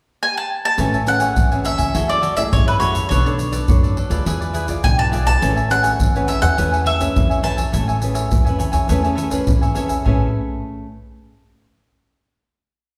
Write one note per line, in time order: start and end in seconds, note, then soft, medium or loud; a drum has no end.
0.23 0.37 G#5 medium
0.37 0.64 A5 medium
0.65 1.05 A5 medium
0.78 1.27 A1 medium
0.78 1.33 A3 medium
0.78 0.95 C#4 medium
0.78 0.96 G#4 soft
0.78 0.91 A4 medium
0.78 0.96 B4 medium
0.78 0.92 C#5 medium
0.78 0.92 E5 medium
0.78 0.92 G#5 medium
0.78 pandeiro medium
0.78 shaker medium
0.78 surdo medium
0.93 1.06 C#5 soft
0.93 1.06 E5 soft
0.93 1.06 G#5 soft
0.93 pandeiro soft
0.93 shaker soft
0.93 surdo soft
1.07 1.34 C#4 medium
1.07 1.35 G#4 medium
1.07 1.35 B4 medium
1.07 1.65 F#5 medium
1.07 muted cavaquinho stroke soft
1.07 pandeiro medium
1.07 shaker medium
1.20 1.49 C#5 medium
1.20 1.49 E5 soft
1.20 1.49 G#5 medium
1.20 pandeiro medium
1.20 shaker medium
1.36 1.74 E2 medium
1.36 1.92 E3 medium
1.36 pandeiro medium
1.36 shaker medium
1.36 surdo medium
1.51 1.90 C#4 medium
1.51 1.91 G#4 medium
1.51 1.91 B4 medium
1.51 1.63 C#5 soft
1.51 1.64 E5 soft
1.51 1.65 G#5 soft
1.51 pandeiro soft
1.51 shaker soft
1.64 1.78 A4 soft
1.64 1.78 C#5 soft
1.64 1.77 E5 medium
1.64 2.10 E5 medium
1.64 1.77 G#5 soft
1.64 pandeiro medium
1.64 shaker medium
1.78 1.91 C#2 medium
1.78 1.93 C#5 medium
1.78 1.93 E5 medium
1.78 1.92 G#5 medium
1.78 pandeiro medium
1.78 shaker medium
1.78 surdo soft
1.93 2.44 F#1 medium
1.93 2.50 F#3 medium
1.93 2.22 A3 medium
1.93 2.22 E4 medium
1.93 2.07 F#4 medium
1.93 2.22 G#4 medium
1.93 2.08 A4 medium
1.93 2.08 C#5 medium
1.93 2.07 E5 medium
1.93 pandeiro medium
1.93 shaker medium
1.93 surdo medium
2.08 2.21 A4 soft
2.08 2.21 C#5 soft
2.08 2.39 D5 medium
2.08 2.22 E5 soft
2.08 pandeiro soft
2.08 shaker soft
2.21 2.34 F#4 medium
2.21 2.35 A4 medium
2.21 2.35 C#5 medium
2.21 2.36 E5 medium
2.21 pandeiro medium
2.21 shaker medium
2.35 2.76 A3 medium
2.35 2.77 E4 medium
2.35 2.77 G#4 medium
2.35 2.42 E5 medium
2.35 muted cavaquinho stroke soft
2.35 pandeiro medium
2.35 shaker medium
2.35 surdo soft
2.52 3.02 F#2 medium
2.52 3.08 C#3 soft
2.52 2.67 C#5 medium
2.52 pandeiro medium
2.52 shaker medium
2.52 surdo medium
2.67 2.79 A4 soft
2.67 2.79 B4 medium
2.67 2.79 C#5 soft
2.67 2.80 E5 soft
2.67 pandeiro soft
2.67 shaker soft
2.79 3.00 A3 soft
2.79 3.00 E4 soft
2.79 2.94 F#4 medium
2.79 3.00 G#4 medium
2.79 2.94 A4 medium
2.79 3.08 C#5 medium
2.79 2.92 C#5 medium
2.79 2.92 E5 medium
2.79 pandeiro medium
2.79 shaker medium
2.93 3.09 A4 soft
2.93 3.08 C#5 soft
2.93 3.08 E5 soft
2.93 pandeiro medium
2.93 shaker medium
2.93 surdo soft
3.09 3.60 B1 medium
3.09 3.65 B3 medium
3.09 3.24 D4 medium
3.09 3.19 D4 medium
3.09 3.24 A4 medium
3.09 3.19 A4 medium
3.09 3.24 B4 medium
3.09 3.64 C#5 medium
3.09 3.19 C#5 medium
3.09 3.23 D5 medium
3.09 pandeiro medium
3.09 shaker medium
3.09 surdo soft
3.25 3.64 D4 medium
3.25 3.37 A4 soft
3.25 3.65 A4 medium
3.25 3.37 B4 soft
3.25 3.65 C#5 medium
3.25 3.37 D5 soft
3.25 pandeiro soft
3.25 shaker soft
3.25 surdo soft
3.38 muted cavaquinho stroke soft
3.38 pandeiro medium
3.38 shaker medium
3.52 3.81 A4 medium
3.52 3.81 B4 medium
3.52 3.81 D5 medium
3.52 pandeiro medium
3.52 shaker medium
3.68 4.05 F#2 medium
3.68 4.23 F#3 medium
3.68 3.96 D4 medium
3.68 3.96 A4 medium
3.68 3.96 C#5 medium
3.68 pandeiro medium
3.68 shaker medium
3.68 surdo loud
3.83 3.96 A4 soft
3.83 3.96 B4 soft
3.83 3.96 D5 soft
3.83 pandeiro soft
3.83 shaker soft
3.96 4.10 D4 soft
3.96 4.11 A4 soft
3.96 4.10 B4 soft
3.96 4.09 D5 medium
3.96 pandeiro medium
4.10 4.23 D2 medium
4.10 4.64 F4 medium
4.10 4.64 G#4 medium
4.10 4.25 A4 medium
4.10 4.25 B4 medium
4.10 4.24 D5 medium
4.10 4.64 D5 medium
4.10 pandeiro medium
4.10 shaker medium
4.10 surdo soft
4.26 4.75 E2 medium
4.26 4.81 E3 medium
4.26 4.39 E4 medium
4.26 4.40 G#4 medium
4.26 4.40 B4 medium
4.26 4.39 D5 medium
4.26 pandeiro medium
4.26 shaker medium
4.26 surdo soft
4.41 4.53 G#4 soft
4.41 4.53 B4 soft
4.41 4.54 D5 soft
4.41 pandeiro soft
4.41 shaker soft
4.53 4.66 E4 medium
4.53 4.66 G#4 medium
4.53 4.67 B4 medium
4.53 4.67 D5 medium
4.53 pandeiro medium
4.53 shaker medium
4.67 5.08 F4 medium
4.67 5.08 G#4 medium
4.67 5.08 D5 medium
4.67 muted cavaquinho stroke soft
4.67 pandeiro medium
4.67 shaker medium
4.67 surdo soft
4.84 5.34 B1 medium
4.84 5.39 B2 medium
4.84 4.97 G#5 loud
4.84 pandeiro medium
4.84 shaker medium
4.84 surdo loud
4.97 5.10 G#4 soft
4.97 5.11 B4 soft
4.97 5.11 D5 soft
4.97 5.07 A5 medium
4.97 pandeiro soft
4.97 shaker soft
5.11 5.26 E4 medium
5.11 5.32 F4 medium
5.11 5.25 G#4 medium
5.11 5.32 G#4 soft
5.11 5.24 B4 medium
5.11 5.24 D5 medium
5.11 5.32 D5 medium
5.11 pandeiro soft
5.11 shaker medium
5.11 surdo soft
5.25 5.40 G#4 soft
5.25 5.40 B4 soft
5.25 5.40 D5 soft
5.25 5.71 A5 medium
5.25 pandeiro medium
5.25 shaker medium
5.25 surdo soft
5.41 5.91 A1 medium
5.41 5.97 A3 medium
5.41 5.59 C#4 medium
5.41 5.59 G#4 medium
5.41 5.55 A4 medium
5.41 5.59 B4 medium
5.41 5.55 C#5 medium
5.41 5.55 E5 medium
5.41 5.54 G#5 medium
5.41 pandeiro medium
5.41 shaker medium
5.41 surdo medium
5.55 5.69 C#5 soft
5.55 5.69 E5 soft
5.55 5.69 G#5 soft
5.55 pandeiro soft
5.55 shaker soft
5.55 surdo soft
5.69 5.98 C#4 medium
5.69 5.98 G#4 medium
5.69 5.98 B4 medium
5.69 6.25 F#5 medium
5.69 muted cavaquinho stroke soft
5.69 pandeiro medium
5.69 shaker medium
5.82 6.12 C#5 medium
5.82 6.12 E5 medium
5.82 6.12 G#5 medium
5.82 pandeiro medium
5.82 shaker medium
6.00 6.37 E2 medium
6.00 6.56 E3 medium
6.00 pandeiro medium
6.00 shaker medium
6.00 surdo medium
6.15 6.54 C#4 medium
6.15 6.54 G#4 medium
6.15 6.54 B4 medium
6.15 6.27 C#5 soft
6.15 6.27 E5 soft
6.15 6.27 G#5 soft
6.15 pandeiro soft
6.15 shaker soft
6.28 6.42 A4 soft
6.28 6.41 C#5 soft
6.28 6.42 E5 medium
6.28 6.40 E5 soft
6.28 6.40 G#5 medium
6.28 pandeiro medium
6.28 shaker medium
6.41 6.55 E2 medium
6.41 6.56 C#5 medium
6.41 6.56 E5 medium
6.41 6.87 F#5 medium
6.41 6.56 G#5 medium
6.41 pandeiro medium
6.41 shaker medium
6.41 surdo soft
6.57 7.07 E2 medium
6.57 7.13 A3 medium
6.57 6.97 C#4 medium
6.57 6.97 G#4 medium
6.57 6.71 A4 medium
6.57 6.97 B4 medium
6.57 6.71 C#5 medium
6.57 6.71 E5 medium
6.57 6.70 G#5 medium
6.57 pandeiro medium
6.57 shaker medium
6.57 surdo medium
6.72 6.84 C#5 soft
6.72 6.84 E5 soft
6.72 6.85 G#5 soft
6.72 pandeiro soft
6.72 shaker soft
6.84 6.97 A4 medium
6.84 6.97 C#5 medium
6.84 6.97 E5 medium
6.84 7.41 E5 medium
6.84 6.98 G#5 medium
6.84 pandeiro medium
6.98 7.39 C#4 medium
6.98 7.40 G#4 medium
6.98 7.40 B4 medium
6.98 muted cavaquinho stroke soft
6.98 pandeiro medium
6.98 shaker medium
6.98 surdo soft
7.16 7.65 E2 medium
7.16 7.71 E3 medium
7.16 pandeiro medium
7.16 shaker medium
7.16 surdo medium
7.29 7.42 C#5 soft
7.29 7.42 E5 soft
7.29 7.43 G#5 soft
7.29 pandeiro soft
7.29 shaker soft
7.42 7.98 C#4 soft
7.42 7.57 A4 medium
7.42 7.98 B4 medium
7.42 7.57 C#5 medium
7.42 7.56 E5 medium
7.42 7.55 G#5 medium
7.42 9.43 A5 medium
7.42 pandeiro soft
7.42 shaker medium
7.57 7.72 C#5 soft
7.57 7.72 E5 soft
7.57 7.71 G#5 soft
7.57 pandeiro medium
7.57 shaker medium
7.57 surdo soft
7.72 8.23 A1 medium
7.72 8.29 A3 medium
7.72 7.86 A4 medium
7.72 7.87 C#5 medium
7.72 7.87 E5 medium
7.72 7.87 G#5 medium
7.72 pandeiro medium
7.72 shaker medium
7.72 surdo medium
7.88 8.00 C#5 soft
7.88 8.00 E5 soft
7.88 8.00 G#5 soft
7.88 pandeiro soft
7.88 shaker soft
7.88 surdo soft
8.00 8.30 C#4 medium
8.00 8.30 G#4 medium
8.00 8.31 B4 medium
8.00 muted cavaquinho stroke soft
8.00 pandeiro medium
8.00 shaker medium
8.14 8.44 C#5 soft
8.14 8.44 E5 medium
8.14 8.43 G#5 medium
8.14 pandeiro medium
8.14 shaker medium
8.31 8.68 E2 medium
8.31 8.87 E3 medium
8.31 pandeiro medium
8.31 shaker medium
8.31 surdo loud
8.45 8.86 C#4 medium
8.45 8.57 C#5 soft
8.45 8.58 E5 soft
8.45 8.58 G#5 soft
8.45 pandeiro soft
8.45 shaker soft
8.49 8.86 B4 medium
8.58 8.73 A4 soft
8.58 8.72 C#5 soft
8.58 8.72 E5 medium
8.58 8.71 G#5 medium
8.58 pandeiro medium
8.58 shaker medium
8.72 8.86 E2 medium
8.72 8.88 C#5 medium
8.72 8.87 E5 medium
8.72 8.87 G#5 medium
8.72 pandeiro medium
8.72 shaker medium
8.72 surdo soft
8.88 9.39 E2 medium
8.88 9.45 A3 medium
8.88 9.00 C#4 medium
8.88 9.00 G#4 medium
8.88 9.02 A4 medium
8.88 9.01 B4 medium
8.88 9.02 C#5 medium
8.88 9.03 E5 medium
8.88 9.02 G#5 medium
8.88 pandeiro medium
8.88 shaker medium
8.88 surdo medium
9.03 9.29 C#4 medium
9.03 9.29 G#4 medium
9.03 9.30 B4 medium
9.03 9.14 C#5 soft
9.03 9.15 E5 soft
9.03 9.15 G#5 soft
9.03 pandeiro soft
9.03 shaker soft
9.15 9.29 A4 medium
9.15 9.28 C#5 medium
9.15 9.29 E5 medium
9.15 9.29 G#5 medium
9.15 pandeiro medium
9.15 shaker medium
9.30 9.72 C#4 medium
9.30 9.72 G#4 medium
9.30 9.72 B4 medium
9.30 muted cavaquinho stroke soft
9.30 pandeiro medium
9.30 shaker medium
9.30 surdo soft
9.47 9.97 E2 medium
9.47 10.03 E3 soft
9.47 pandeiro medium
9.47 shaker medium
9.47 surdo loud
9.61 9.74 C#5 soft
9.61 9.75 E5 soft
9.61 9.75 G#5 soft
9.61 pandeiro soft
9.61 shaker soft
9.75 10.03 C#4 soft
9.75 10.04 G#4 medium
9.75 9.89 A4 medium
9.75 10.04 B4 medium
9.75 9.89 C#5 medium
9.75 9.89 E5 medium
9.75 9.87 G#5 medium
9.75 pandeiro medium
9.75 shaker medium
9.75 surdo soft
9.88 10.04 C#5 soft
9.88 10.04 E5 soft
9.88 10.03 G#5 soft
9.88 pandeiro medium
9.88 shaker medium
9.88 surdo soft
10.05 10.33 A1 medium
10.05 10.86 A3 medium
10.05 10.86 C#4 medium
10.05 10.86 G#4 medium
10.05 10.28 A4 medium
10.05 10.86 B4 medium
10.05 10.29 C#5 medium
10.05 10.29 E5 medium
10.05 10.29 G#5 medium
10.05 surdo medium